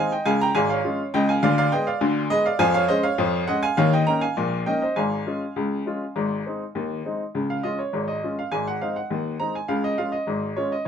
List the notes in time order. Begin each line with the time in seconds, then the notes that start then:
Already playing: G#3 C4 D#4 F5 G#5
0.12 D#5 G5
0.25 C#2 C#3 F5 G#5
0.41 G5 A#5
0.55 G#1 G#2 F5 G#5
0.70 C#5 F5
0.84 G#3 C#4 F4
1.14 C#2 C#3 D#5 G5
1.29 F5 G#5
1.43 D2 D3 D5 F5
1.58 D5 F5
1.72 G#3 B3 G#4 D#5 G5
1.87 D5 F5
2.01 D2 D3
2.30 G#3 B3 G#4 B4 D#5
2.46 D5 F5
2.59 F2 F3 F5 G#5
2.74 C#5 F5
2.88 G#3 C#4 G#4 C5 D#5
3.03 C#5 F5
3.18 F2 F3
3.47 G#3 C#4 G#4 D#5 F#5
3.63 F5 G#5
3.77 D#2 D#3 C#5 F5
3.93 D#5 G5
4.07 A#3 C#4 D#4 G5 A#5
4.21 F5 G#5
4.37 A#1 A#2
4.66 A#3 C#4 D#4 D#5 G5
4.82 C5 D#5
4.96 G#1 G#2 F5 G#5
5.27 G#3 C#4 F4
5.56 C#2 C#3
5.86 G#3 C#4 F4
6.16 G#1 G#2
6.46 G#3 C4 D#4
6.75 D#2 D#3
7.05 G#3 C4 D#4
7.35 C#2 C#3
7.50 F5
7.63 G#3 C#4 F4 D#5
7.79 C#5
7.93 G#1 G#2
8.08 D#5
8.23 G#3 C#4 F4
8.39 F5
8.52 G#1 G#2 G#5
8.68 F#5
8.81 G#3 C4 D#4 F5
8.96 F#5
9.10 D#2 D#3
9.40 G#3 C4 D#4 A#5
9.55 G#5
9.68 C#2 C#3 F5
9.84 D#5
9.98 G#3 C#4 F4 F5
10.12 D#5
10.27 G#1 G#2
10.56 G#3 C#4 F4 C#5
10.72 D#5